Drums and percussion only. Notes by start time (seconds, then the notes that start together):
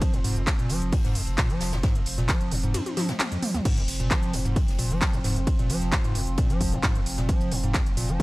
0.02 kick, closed hi-hat, ride
0.13 closed hi-hat
0.24 open hi-hat, ride
0.36 closed hi-hat
0.47 kick, snare, clap, closed hi-hat, ride
0.59 closed hi-hat
0.69 open hi-hat, ride
0.81 closed hi-hat, ride
0.92 kick, closed hi-hat, open hi-hat, ride
1.04 snare, closed hi-hat
1.15 open hi-hat, ride
1.27 closed hi-hat
1.38 kick, snare, clap, closed hi-hat, ride
1.50 closed hi-hat
1.60 snare, open hi-hat, ride
1.73 snare, closed hi-hat, ride
1.83 kick, snare, closed hi-hat, ride
1.95 closed hi-hat
2.06 open hi-hat, ride
2.17 snare, closed hi-hat
2.29 kick, snare, clap, closed hi-hat, ride
2.41 closed hi-hat, ride
2.51 open hi-hat, ride
2.63 closed hi-hat
2.74 closed hi-hat, high tom, ride
2.86 closed hi-hat, high tom
2.97 snare, open hi-hat, high tom, ride
3.09 snare, closed hi-hat, mid tom, ride
3.19 snare, clap, closed hi-hat, mid tom, ride
3.32 closed hi-hat
3.42 mid tom, open hi-hat, ride
3.54 snare, closed hi-hat, mid tom
3.65 kick, closed hi-hat, crash, ride
3.77 closed hi-hat
3.88 open hi-hat, ride
4.00 closed hi-hat
4.11 kick, snare, clap, closed hi-hat, ride
4.23 closed hi-hat
4.33 open hi-hat, ride
4.45 closed hi-hat, ride
4.56 kick, closed hi-hat, open hi-hat, ride
4.68 snare, closed hi-hat
4.78 open hi-hat, ride
4.91 closed hi-hat
5.02 kick, snare, clap, closed hi-hat, ride
5.13 closed hi-hat
5.24 snare, open hi-hat, ride
5.36 closed hi-hat
5.47 kick, closed hi-hat, ride
5.59 closed hi-hat
5.70 open hi-hat, ride
5.82 snare, closed hi-hat
5.92 kick, snare, clap, closed hi-hat, ride
6.04 closed hi-hat, ride
6.15 open hi-hat, ride
6.27 closed hi-hat
6.37 kick, closed hi-hat, ride
6.50 closed hi-hat
6.60 kick, open hi-hat, ride
6.73 closed hi-hat
6.83 kick, snare, clap, closed hi-hat, ride
6.95 closed hi-hat
7.06 open hi-hat, ride
7.17 snare, closed hi-hat
7.29 kick, closed hi-hat, ride
7.41 closed hi-hat
7.52 open hi-hat, ride
7.64 closed hi-hat
7.74 kick, snare, clap, closed hi-hat, ride
7.86 closed hi-hat
7.97 open hi-hat, ride
8.08 closed hi-hat, ride